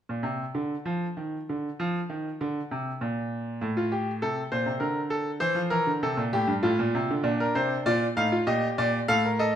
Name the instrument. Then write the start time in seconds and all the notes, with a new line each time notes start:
grand piano
0.09 A#2
0.23 C3
0.55 D3
0.85 F3
1.17 D#3
1.49 D3
1.80 F3
2.10 D#3
2.41 D3
2.71 C3
3.01 A#2
3.61 A2
3.77 F4
3.92 G4
4.22 C3 A4
4.52 A#2 C5
4.66 C3
4.80 D3 A#4
5.10 A4
5.40 E3 C5
5.55 F3
5.70 E3 A#4
5.87 D3
6.03 C3 A4
6.17 A#2
6.33 A2 G4
6.47 G2
6.63 A2 F4
6.79 A#2
6.95 C3
7.11 D3
7.24 A#2 D4
7.40 A#4
7.55 C3 C5
7.86 A#2 F4 D5
8.17 A2 D#4 F5
8.32 F4
8.47 A#2 G4 D#5
8.78 A#2 D5
9.08 A2 A4 F5
9.25 A#4
9.39 A4 D#5